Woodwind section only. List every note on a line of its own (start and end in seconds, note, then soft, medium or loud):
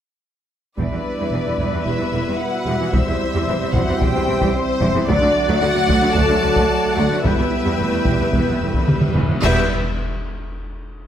0.79 5.05 G3 medium
0.79 5.05 E4 medium
0.79 2.90 B4 soft
0.79 5.05 E5 soft
2.94 5.08 C5 medium
5.10 7.25 A3 medium
5.10 7.25 D4 medium
5.10 7.25 D5 medium
5.10 7.25 F#5 medium
7.25 9.16 B3 medium
7.25 9.16 E4 medium
7.25 9.16 B4 medium
7.25 9.16 G5 medium
9.43 9.65 B3 medium
9.43 9.66 E4 medium
9.43 9.66 B4 medium
9.43 9.66 G5 medium